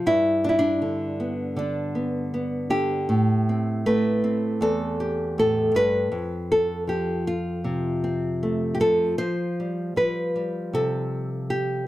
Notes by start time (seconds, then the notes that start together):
0.06 G2 E4
0.44 D4
0.49 E4
0.59 D4
0.82 D3
1.20 B3
1.56 D3 D4
1.95 B3
2.34 B3
2.70 D3 G4
3.09 A2
3.49 C4
3.86 A3 B4
4.24 C4
4.61 E2 A4
5.00 G4
5.38 A2 A4
5.75 G2 B4
6.12 F2
6.52 A4
6.87 F3 G4
7.27 F4
7.64 C3
8.04 C4
8.43 A3
8.75 G4
8.80 F3 A4
9.18 F3 C5
9.60 G3
9.96 F3 B4
10.36 G3
10.73 C3 A4
11.50 G4